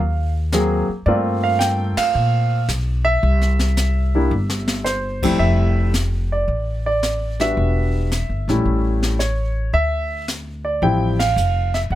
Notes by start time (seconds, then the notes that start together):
Already playing: D#2 F5
0.52 F#3 A#3 C4 G#4, snare, hi-hat pedal
0.89 muted upright bass stroke
1.06 G2 A3 A#3 C4 F4 D5, brush sweep
1.44 F5
1.59 G5, snare, hi-hat pedal
1.97 F5, muted upright bass stroke, snare, ride
2.15 A#2, brush sweep
2.69 B1, snare, hi-hat pedal
3.05 E5
3.23 C2, brush sweep
3.41 snare
3.59 snare
3.77 snare, hi-hat pedal
4.15 G3 A#3 D4 E4
4.31 G1
4.50 snare
4.68 snare
4.84 C5, snare, hi-hat pedal
5.23 F2 G3 A3 C4 E4, kick, crash
5.39 F1 E5, brush sweep
5.94 snare, hi-hat pedal
6.32 D5
6.48 A1, brush sweep
6.86 D5
7.03 snare, hi-hat pedal
7.40 G3 B3 D4 F#4 E5, snare
7.57 E1, brush sweep
8.12 snare, hi-hat pedal
8.29 G1
8.48 A#1 G3 A3 C#4 E4, snare
8.65 A1, brush sweep
9.03 snare
9.19 C#5, snare, hi-hat pedal
9.73 D2 E5, brush sweep
10.28 snare, hi-hat pedal
10.65 D5
10.82 A1 F3 G3 C4 E4 G5, brush sweep
11.19 F5, snare, ride
11.36 F1, hi-hat pedal
11.74 E5, snare
11.90 E1 F#5, brush sweep